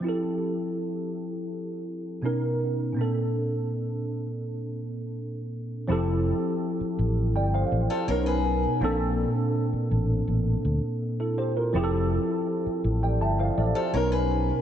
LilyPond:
<<
  \new Staff \with { instrumentName = "Steel-string acoustic guitar" } { \time 4/4 \key f \major \tempo 4 = 82 r1 | r1 | r2 r8. <f' a'>16 <ais' des''>16 <aes' b'>8. | r1 |
r2 r8. <f' a'>16 <ais' des''>16 <aes' b'>8. | }
  \new Staff \with { instrumentName = "Tine electric piano" } { \time 4/4 \key f \major << { r1 | r1 | r2 <d'' g''>16 <c'' f''>8 <g' c''>8 r8. | r2. r16 <e' a'>16 <g' c''>16 <f' bes'>16~ |
<f' bes'>16 r4. <d'' g''>16 <e'' a''>16 <c'' f''>16 <a' d''>16 <g' c''>8 r8. | } \\ { <f c' e' g' a'>2. <b, b des' dis' ais'>4 | <bes, bes c' d' a'>1 | <f c' e' g' a'>4 r2 <b, b des' dis' ais'>4 | <bes, bes c' d' a'>4 r2. |
<f c' e' g' aes' a'>4 r2 <b, b des' dis' ais'>4 | } >> }
  \new Staff \with { instrumentName = "Fingered electric bass" } { \clef bass \time 4/4 \key f \major r1 | r1 | f,,8. r8. a,,8 g,,8 a,,16 r16 b,,4 | bes,,8. r8. a,,8 a,,8 d,16 r4 r16 |
f,,8. r8. a,,8 g,,8 a,,16 r16 b,,4 | }
>>